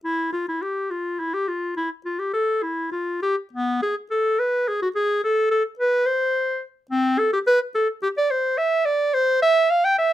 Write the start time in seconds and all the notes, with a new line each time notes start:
0.04 E4
0.32 F4
0.48 E4
0.62 G4
0.90 F4
1.20 E4
1.34 G4
1.48 F4
1.76 E4
2.05 F4
2.19 G4
2.33 A4
2.63 E4
2.91 F4
3.22 G4
3.53 B3
3.82 G#4
4.11 A4
4.39 B4
4.68 G#4
4.82 F#4
4.95 G#4
5.24 A4
5.51 A4
5.79 B4
6.06 C5
6.90 C4
7.18 A4
7.33 G4
7.47 B4
7.75 A4
8.02 G4
8.17 D5
8.31 C5
8.57 E5
8.85 D5
9.14 C5
9.42 E5
9.70 F5
9.85 G5
9.98 E5